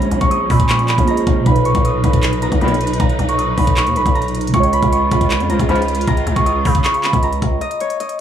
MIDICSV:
0, 0, Header, 1, 7, 480
1, 0, Start_track
1, 0, Tempo, 384615
1, 1823, Time_signature, 4, 2, 24, 8
1, 10240, End_track
2, 0, Start_track
2, 0, Title_t, "Harp"
2, 0, Program_c, 0, 46
2, 0, Note_on_c, 0, 82, 89
2, 259, Note_on_c, 0, 85, 80
2, 385, Note_on_c, 0, 87, 86
2, 621, Note_on_c, 0, 83, 80
2, 696, Note_off_c, 0, 82, 0
2, 857, Note_off_c, 0, 85, 0
2, 862, Note_on_c, 0, 85, 96
2, 1096, Note_off_c, 0, 83, 0
2, 1101, Note_on_c, 0, 83, 79
2, 1345, Note_on_c, 0, 82, 85
2, 1420, Note_off_c, 0, 83, 0
2, 1824, Note_on_c, 0, 83, 87
2, 1854, Note_off_c, 0, 87, 0
2, 1899, Note_off_c, 0, 82, 0
2, 2061, Note_off_c, 0, 85, 0
2, 2066, Note_on_c, 0, 85, 89
2, 2310, Note_on_c, 0, 87, 82
2, 2542, Note_off_c, 0, 83, 0
2, 2547, Note_on_c, 0, 83, 77
2, 3025, Note_on_c, 0, 82, 84
2, 3100, Note_off_c, 0, 83, 0
2, 3264, Note_on_c, 0, 83, 84
2, 3339, Note_off_c, 0, 82, 0
2, 3640, Note_off_c, 0, 85, 0
2, 3740, Note_on_c, 0, 82, 100
2, 3779, Note_off_c, 0, 87, 0
2, 3815, Note_off_c, 0, 83, 0
2, 4103, Note_on_c, 0, 85, 77
2, 4222, Note_on_c, 0, 87, 79
2, 4460, Note_on_c, 0, 83, 74
2, 4535, Note_off_c, 0, 82, 0
2, 4702, Note_off_c, 0, 85, 0
2, 4707, Note_on_c, 0, 85, 97
2, 4945, Note_off_c, 0, 83, 0
2, 4950, Note_on_c, 0, 83, 83
2, 5180, Note_on_c, 0, 82, 90
2, 5254, Note_off_c, 0, 83, 0
2, 5658, Note_off_c, 0, 85, 0
2, 5663, Note_on_c, 0, 85, 94
2, 5690, Note_off_c, 0, 87, 0
2, 5901, Note_on_c, 0, 83, 93
2, 5976, Note_off_c, 0, 82, 0
2, 6141, Note_off_c, 0, 85, 0
2, 6146, Note_on_c, 0, 85, 76
2, 6380, Note_off_c, 0, 83, 0
2, 6385, Note_on_c, 0, 83, 85
2, 6861, Note_on_c, 0, 82, 81
2, 6936, Note_off_c, 0, 83, 0
2, 7101, Note_on_c, 0, 83, 93
2, 7176, Note_off_c, 0, 82, 0
2, 7581, Note_on_c, 0, 82, 106
2, 7656, Note_off_c, 0, 83, 0
2, 7720, Note_off_c, 0, 85, 0
2, 7935, Note_on_c, 0, 85, 76
2, 8062, Note_on_c, 0, 87, 86
2, 8300, Note_on_c, 0, 83, 77
2, 8374, Note_off_c, 0, 82, 0
2, 8539, Note_off_c, 0, 85, 0
2, 8544, Note_on_c, 0, 85, 105
2, 8780, Note_off_c, 0, 83, 0
2, 8785, Note_on_c, 0, 83, 83
2, 9028, Note_on_c, 0, 82, 81
2, 9102, Note_off_c, 0, 83, 0
2, 9500, Note_on_c, 0, 75, 91
2, 9531, Note_off_c, 0, 87, 0
2, 9746, Note_on_c, 0, 73, 85
2, 9981, Note_off_c, 0, 75, 0
2, 9986, Note_on_c, 0, 75, 82
2, 10118, Note_off_c, 0, 85, 0
2, 10240, Note_off_c, 0, 73, 0
2, 10240, Note_off_c, 0, 75, 0
2, 10240, Note_off_c, 0, 82, 0
2, 10240, End_track
3, 0, Start_track
3, 0, Title_t, "Synth keys"
3, 0, Program_c, 1, 88
3, 0, Control_c, 1, 64, 127
3, 0, Note_on_c, 1, 58, 71
3, 0, Note_on_c, 1, 65, 61
3, 0, Note_on_c, 1, 68, 60
3, 0, Note_on_c, 1, 73, 82
3, 1259, Note_off_c, 1, 58, 0
3, 1282, Note_off_c, 1, 65, 0
3, 1305, Note_off_c, 1, 68, 0
3, 1308, Note_on_c, 1, 58, 52
3, 1329, Note_off_c, 1, 73, 0
3, 1331, Note_on_c, 1, 65, 46
3, 1354, Note_on_c, 1, 68, 49
3, 1378, Note_on_c, 1, 75, 57
3, 1753, Note_on_c, 1, 47, 66
3, 1800, Note_on_c, 1, 46, 59
3, 1805, Note_off_c, 1, 58, 0
3, 1817, Note_off_c, 1, 65, 0
3, 1829, Note_off_c, 1, 68, 0
3, 1840, Note_off_c, 1, 75, 0
3, 1841, Control_c, 1, 64, 0
3, 1846, Note_on_c, 1, 63, 70
3, 1893, Note_on_c, 1, 71, 80
3, 2082, Control_c, 1, 64, 127
3, 5578, Note_off_c, 1, 47, 0
3, 5599, Note_on_c, 1, 49, 74
3, 5601, Note_off_c, 1, 46, 0
3, 5624, Note_off_c, 1, 63, 0
3, 5645, Note_on_c, 1, 56, 59
3, 5648, Note_off_c, 1, 71, 0
3, 5680, Control_c, 1, 64, 0
3, 5692, Note_on_c, 1, 65, 60
3, 5739, Note_on_c, 1, 73, 78
3, 5933, Control_c, 1, 64, 127
3, 9421, Note_off_c, 1, 49, 0
3, 9444, Note_off_c, 1, 56, 0
3, 9468, Note_off_c, 1, 65, 0
3, 9491, Note_off_c, 1, 73, 0
3, 9518, Control_c, 1, 64, 0
3, 10240, End_track
4, 0, Start_track
4, 0, Title_t, "String section"
4, 0, Program_c, 2, 48
4, 0, Note_on_c, 2, 53, 71
4, 0, Note_on_c, 2, 56, 78
4, 0, Note_on_c, 2, 61, 72
4, 1774, Note_off_c, 2, 61, 0
4, 1786, Note_off_c, 2, 56, 0
4, 1825, Note_on_c, 2, 71, 72
4, 1826, Note_on_c, 2, 63, 85
4, 5615, Note_off_c, 2, 53, 0
4, 5626, Note_off_c, 2, 63, 0
4, 5626, Note_off_c, 2, 71, 0
4, 5662, Note_on_c, 2, 49, 80
4, 5662, Note_on_c, 2, 56, 72
4, 5662, Note_on_c, 2, 65, 85
4, 9464, Note_off_c, 2, 49, 0
4, 9464, Note_off_c, 2, 56, 0
4, 9464, Note_off_c, 2, 65, 0
4, 10240, End_track
5, 0, Start_track
5, 0, Title_t, "Brass ensemble"
5, 0, Program_c, 3, 61
5, 3023, Note_on_c, 3, 51, 85
5, 3024, Note_on_c, 3, 35, 78
5, 3024, Note_on_c, 3, 46, 77
5, 3125, Note_off_c, 3, 35, 0
5, 3125, Note_off_c, 3, 46, 0
5, 3125, Note_off_c, 3, 51, 0
5, 3263, Note_on_c, 3, 35, 103
5, 3263, Note_on_c, 3, 46, 91
5, 3263, Note_on_c, 3, 51, 106
5, 3416, Note_off_c, 3, 35, 0
5, 3416, Note_off_c, 3, 46, 0
5, 3416, Note_off_c, 3, 51, 0
5, 6862, Note_on_c, 3, 44, 89
5, 6863, Note_on_c, 3, 37, 85
5, 6863, Note_on_c, 3, 53, 99
5, 6965, Note_off_c, 3, 37, 0
5, 6965, Note_off_c, 3, 44, 0
5, 6965, Note_off_c, 3, 53, 0
5, 7103, Note_on_c, 3, 37, 101
5, 7103, Note_on_c, 3, 44, 111
5, 7103, Note_on_c, 3, 53, 106
5, 7256, Note_off_c, 3, 37, 0
5, 7256, Note_off_c, 3, 44, 0
5, 7256, Note_off_c, 3, 53, 0
5, 10240, End_track
6, 0, Start_track
6, 0, Title_t, "808-style bass"
6, 0, Program_c, 4, 38
6, 0, Note_on_c, 4, 34, 114
6, 133, Note_off_c, 4, 34, 0
6, 142, Note_on_c, 4, 34, 106
6, 258, Note_off_c, 4, 34, 0
6, 263, Note_on_c, 4, 34, 104
6, 609, Note_off_c, 4, 34, 0
6, 625, Note_on_c, 4, 46, 105
6, 1200, Note_off_c, 4, 46, 0
6, 1224, Note_on_c, 4, 34, 101
6, 1569, Note_off_c, 4, 34, 0
6, 1584, Note_on_c, 4, 34, 100
6, 1814, Note_off_c, 4, 34, 0
6, 1823, Note_on_c, 4, 35, 112
6, 2169, Note_off_c, 4, 35, 0
6, 2182, Note_on_c, 4, 35, 104
6, 2528, Note_off_c, 4, 35, 0
6, 2545, Note_on_c, 4, 35, 99
6, 3120, Note_off_c, 4, 35, 0
6, 3143, Note_on_c, 4, 35, 103
6, 3255, Note_off_c, 4, 35, 0
6, 3263, Note_on_c, 4, 35, 105
6, 3724, Note_off_c, 4, 35, 0
6, 3743, Note_on_c, 4, 35, 116
6, 3973, Note_off_c, 4, 35, 0
6, 3982, Note_on_c, 4, 35, 110
6, 4443, Note_off_c, 4, 35, 0
6, 4464, Note_on_c, 4, 35, 108
6, 4822, Note_on_c, 4, 39, 100
6, 4841, Note_off_c, 4, 35, 0
6, 4943, Note_on_c, 4, 35, 105
6, 4962, Note_off_c, 4, 39, 0
6, 5057, Note_off_c, 4, 35, 0
6, 5064, Note_on_c, 4, 35, 101
6, 5639, Note_off_c, 4, 35, 0
6, 5663, Note_on_c, 4, 37, 115
6, 6009, Note_off_c, 4, 37, 0
6, 6023, Note_on_c, 4, 37, 103
6, 6368, Note_off_c, 4, 37, 0
6, 6384, Note_on_c, 4, 37, 104
6, 6742, Note_on_c, 4, 41, 104
6, 6761, Note_off_c, 4, 37, 0
6, 6861, Note_on_c, 4, 37, 103
6, 6880, Note_off_c, 4, 41, 0
6, 6976, Note_off_c, 4, 37, 0
6, 6983, Note_on_c, 4, 37, 105
6, 7092, Note_off_c, 4, 37, 0
6, 7100, Note_on_c, 4, 37, 107
6, 7562, Note_off_c, 4, 37, 0
6, 7582, Note_on_c, 4, 37, 114
6, 7813, Note_off_c, 4, 37, 0
6, 7821, Note_on_c, 4, 37, 110
6, 7934, Note_off_c, 4, 37, 0
6, 7942, Note_on_c, 4, 37, 107
6, 8288, Note_off_c, 4, 37, 0
6, 8303, Note_on_c, 4, 49, 105
6, 8879, Note_off_c, 4, 49, 0
6, 8902, Note_on_c, 4, 37, 100
6, 9248, Note_off_c, 4, 37, 0
6, 9262, Note_on_c, 4, 37, 99
6, 9493, Note_off_c, 4, 37, 0
6, 10240, End_track
7, 0, Start_track
7, 0, Title_t, "Drums"
7, 23, Note_on_c, 9, 42, 61
7, 143, Note_off_c, 9, 42, 0
7, 143, Note_on_c, 9, 42, 76
7, 263, Note_off_c, 9, 42, 0
7, 263, Note_on_c, 9, 36, 91
7, 263, Note_on_c, 9, 42, 58
7, 388, Note_off_c, 9, 36, 0
7, 388, Note_off_c, 9, 42, 0
7, 389, Note_on_c, 9, 42, 81
7, 514, Note_off_c, 9, 42, 0
7, 625, Note_on_c, 9, 36, 97
7, 625, Note_on_c, 9, 46, 83
7, 744, Note_on_c, 9, 42, 66
7, 745, Note_off_c, 9, 36, 0
7, 745, Note_on_c, 9, 36, 96
7, 749, Note_off_c, 9, 46, 0
7, 861, Note_off_c, 9, 42, 0
7, 861, Note_on_c, 9, 42, 83
7, 864, Note_on_c, 9, 39, 125
7, 870, Note_off_c, 9, 36, 0
7, 986, Note_off_c, 9, 42, 0
7, 986, Note_on_c, 9, 42, 57
7, 989, Note_off_c, 9, 39, 0
7, 1103, Note_off_c, 9, 42, 0
7, 1103, Note_on_c, 9, 42, 69
7, 1105, Note_on_c, 9, 39, 96
7, 1224, Note_on_c, 9, 36, 97
7, 1227, Note_off_c, 9, 42, 0
7, 1230, Note_off_c, 9, 39, 0
7, 1230, Note_on_c, 9, 42, 68
7, 1342, Note_off_c, 9, 42, 0
7, 1342, Note_on_c, 9, 42, 70
7, 1349, Note_off_c, 9, 36, 0
7, 1464, Note_off_c, 9, 42, 0
7, 1464, Note_on_c, 9, 42, 61
7, 1583, Note_off_c, 9, 42, 0
7, 1583, Note_on_c, 9, 36, 106
7, 1583, Note_on_c, 9, 42, 65
7, 1708, Note_off_c, 9, 36, 0
7, 1708, Note_off_c, 9, 42, 0
7, 1823, Note_on_c, 9, 36, 116
7, 1823, Note_on_c, 9, 42, 77
7, 1943, Note_off_c, 9, 42, 0
7, 1943, Note_on_c, 9, 42, 62
7, 1948, Note_off_c, 9, 36, 0
7, 2062, Note_off_c, 9, 42, 0
7, 2062, Note_on_c, 9, 42, 75
7, 2181, Note_off_c, 9, 42, 0
7, 2181, Note_on_c, 9, 42, 60
7, 2182, Note_on_c, 9, 36, 92
7, 2306, Note_off_c, 9, 42, 0
7, 2307, Note_off_c, 9, 36, 0
7, 2307, Note_on_c, 9, 42, 81
7, 2431, Note_off_c, 9, 42, 0
7, 2543, Note_on_c, 9, 42, 84
7, 2544, Note_on_c, 9, 36, 95
7, 2663, Note_off_c, 9, 42, 0
7, 2663, Note_on_c, 9, 42, 67
7, 2664, Note_off_c, 9, 36, 0
7, 2664, Note_on_c, 9, 36, 93
7, 2780, Note_off_c, 9, 42, 0
7, 2780, Note_on_c, 9, 42, 81
7, 2783, Note_on_c, 9, 39, 127
7, 2789, Note_off_c, 9, 36, 0
7, 2904, Note_off_c, 9, 42, 0
7, 2904, Note_on_c, 9, 42, 58
7, 2907, Note_off_c, 9, 39, 0
7, 3021, Note_off_c, 9, 42, 0
7, 3021, Note_on_c, 9, 42, 69
7, 3143, Note_on_c, 9, 36, 97
7, 3146, Note_off_c, 9, 42, 0
7, 3148, Note_on_c, 9, 42, 68
7, 3262, Note_off_c, 9, 42, 0
7, 3262, Note_on_c, 9, 42, 43
7, 3268, Note_off_c, 9, 36, 0
7, 3343, Note_off_c, 9, 42, 0
7, 3343, Note_on_c, 9, 42, 48
7, 3423, Note_off_c, 9, 42, 0
7, 3423, Note_on_c, 9, 42, 53
7, 3503, Note_off_c, 9, 42, 0
7, 3503, Note_on_c, 9, 42, 64
7, 3583, Note_off_c, 9, 42, 0
7, 3583, Note_on_c, 9, 42, 70
7, 3663, Note_off_c, 9, 42, 0
7, 3663, Note_on_c, 9, 42, 74
7, 3742, Note_off_c, 9, 42, 0
7, 3742, Note_on_c, 9, 42, 74
7, 3743, Note_on_c, 9, 36, 117
7, 3862, Note_off_c, 9, 42, 0
7, 3862, Note_on_c, 9, 42, 60
7, 3868, Note_off_c, 9, 36, 0
7, 3982, Note_off_c, 9, 42, 0
7, 3982, Note_on_c, 9, 42, 74
7, 4102, Note_off_c, 9, 42, 0
7, 4102, Note_on_c, 9, 42, 58
7, 4227, Note_off_c, 9, 42, 0
7, 4228, Note_on_c, 9, 42, 77
7, 4353, Note_off_c, 9, 42, 0
7, 4463, Note_on_c, 9, 46, 84
7, 4464, Note_on_c, 9, 36, 93
7, 4583, Note_on_c, 9, 42, 68
7, 4584, Note_off_c, 9, 36, 0
7, 4584, Note_on_c, 9, 36, 96
7, 4588, Note_off_c, 9, 46, 0
7, 4700, Note_off_c, 9, 42, 0
7, 4700, Note_on_c, 9, 42, 80
7, 4703, Note_on_c, 9, 39, 126
7, 4709, Note_off_c, 9, 36, 0
7, 4825, Note_off_c, 9, 42, 0
7, 4825, Note_on_c, 9, 42, 55
7, 4828, Note_off_c, 9, 39, 0
7, 4942, Note_off_c, 9, 42, 0
7, 4942, Note_on_c, 9, 42, 71
7, 5063, Note_on_c, 9, 36, 102
7, 5067, Note_off_c, 9, 42, 0
7, 5070, Note_on_c, 9, 42, 70
7, 5184, Note_off_c, 9, 42, 0
7, 5184, Note_on_c, 9, 42, 42
7, 5188, Note_off_c, 9, 36, 0
7, 5264, Note_off_c, 9, 42, 0
7, 5264, Note_on_c, 9, 42, 49
7, 5344, Note_off_c, 9, 42, 0
7, 5344, Note_on_c, 9, 42, 55
7, 5424, Note_off_c, 9, 42, 0
7, 5424, Note_on_c, 9, 42, 63
7, 5504, Note_off_c, 9, 42, 0
7, 5504, Note_on_c, 9, 42, 70
7, 5584, Note_off_c, 9, 42, 0
7, 5584, Note_on_c, 9, 42, 77
7, 5663, Note_off_c, 9, 42, 0
7, 5663, Note_on_c, 9, 36, 112
7, 5663, Note_on_c, 9, 42, 79
7, 5784, Note_off_c, 9, 42, 0
7, 5784, Note_on_c, 9, 42, 62
7, 5788, Note_off_c, 9, 36, 0
7, 5903, Note_off_c, 9, 42, 0
7, 5903, Note_on_c, 9, 42, 73
7, 6022, Note_off_c, 9, 42, 0
7, 6022, Note_on_c, 9, 36, 91
7, 6022, Note_on_c, 9, 42, 59
7, 6147, Note_off_c, 9, 36, 0
7, 6147, Note_off_c, 9, 42, 0
7, 6147, Note_on_c, 9, 42, 76
7, 6272, Note_off_c, 9, 42, 0
7, 6382, Note_on_c, 9, 42, 82
7, 6384, Note_on_c, 9, 36, 95
7, 6502, Note_off_c, 9, 42, 0
7, 6502, Note_on_c, 9, 42, 65
7, 6503, Note_off_c, 9, 36, 0
7, 6503, Note_on_c, 9, 36, 94
7, 6619, Note_off_c, 9, 42, 0
7, 6619, Note_on_c, 9, 42, 82
7, 6622, Note_on_c, 9, 39, 126
7, 6628, Note_off_c, 9, 36, 0
7, 6743, Note_off_c, 9, 42, 0
7, 6743, Note_on_c, 9, 42, 56
7, 6747, Note_off_c, 9, 39, 0
7, 6860, Note_off_c, 9, 42, 0
7, 6860, Note_on_c, 9, 42, 70
7, 6982, Note_on_c, 9, 36, 98
7, 6985, Note_off_c, 9, 42, 0
7, 6988, Note_on_c, 9, 42, 68
7, 7102, Note_off_c, 9, 42, 0
7, 7102, Note_on_c, 9, 42, 43
7, 7107, Note_off_c, 9, 36, 0
7, 7182, Note_off_c, 9, 42, 0
7, 7182, Note_on_c, 9, 42, 49
7, 7262, Note_off_c, 9, 42, 0
7, 7262, Note_on_c, 9, 42, 53
7, 7342, Note_off_c, 9, 42, 0
7, 7342, Note_on_c, 9, 42, 63
7, 7422, Note_off_c, 9, 42, 0
7, 7422, Note_on_c, 9, 42, 69
7, 7502, Note_off_c, 9, 42, 0
7, 7502, Note_on_c, 9, 42, 74
7, 7581, Note_off_c, 9, 42, 0
7, 7581, Note_on_c, 9, 42, 80
7, 7582, Note_on_c, 9, 36, 117
7, 7702, Note_off_c, 9, 42, 0
7, 7702, Note_on_c, 9, 42, 61
7, 7707, Note_off_c, 9, 36, 0
7, 7822, Note_off_c, 9, 42, 0
7, 7822, Note_on_c, 9, 42, 78
7, 7941, Note_off_c, 9, 42, 0
7, 7941, Note_on_c, 9, 42, 59
7, 7942, Note_on_c, 9, 36, 91
7, 8065, Note_off_c, 9, 42, 0
7, 8066, Note_off_c, 9, 36, 0
7, 8067, Note_on_c, 9, 42, 78
7, 8192, Note_off_c, 9, 42, 0
7, 8302, Note_on_c, 9, 46, 86
7, 8303, Note_on_c, 9, 36, 96
7, 8421, Note_on_c, 9, 42, 67
7, 8423, Note_off_c, 9, 36, 0
7, 8423, Note_on_c, 9, 36, 94
7, 8427, Note_off_c, 9, 46, 0
7, 8539, Note_off_c, 9, 42, 0
7, 8539, Note_on_c, 9, 42, 81
7, 8543, Note_on_c, 9, 39, 127
7, 8548, Note_off_c, 9, 36, 0
7, 8664, Note_off_c, 9, 42, 0
7, 8664, Note_on_c, 9, 42, 58
7, 8667, Note_off_c, 9, 39, 0
7, 8780, Note_off_c, 9, 42, 0
7, 8780, Note_on_c, 9, 42, 70
7, 8783, Note_on_c, 9, 39, 94
7, 8902, Note_on_c, 9, 36, 100
7, 8905, Note_off_c, 9, 42, 0
7, 8907, Note_off_c, 9, 39, 0
7, 8907, Note_on_c, 9, 42, 69
7, 9019, Note_off_c, 9, 42, 0
7, 9019, Note_on_c, 9, 42, 68
7, 9027, Note_off_c, 9, 36, 0
7, 9142, Note_off_c, 9, 42, 0
7, 9142, Note_on_c, 9, 42, 60
7, 9262, Note_off_c, 9, 42, 0
7, 9262, Note_on_c, 9, 36, 101
7, 9262, Note_on_c, 9, 42, 64
7, 9387, Note_off_c, 9, 36, 0
7, 9387, Note_off_c, 9, 42, 0
7, 9502, Note_on_c, 9, 42, 72
7, 9622, Note_off_c, 9, 42, 0
7, 9622, Note_on_c, 9, 42, 60
7, 9741, Note_off_c, 9, 42, 0
7, 9741, Note_on_c, 9, 42, 75
7, 9860, Note_off_c, 9, 42, 0
7, 9860, Note_on_c, 9, 42, 57
7, 9985, Note_off_c, 9, 42, 0
7, 9987, Note_on_c, 9, 42, 81
7, 10099, Note_off_c, 9, 42, 0
7, 10099, Note_on_c, 9, 42, 58
7, 10224, Note_off_c, 9, 42, 0
7, 10240, End_track
0, 0, End_of_file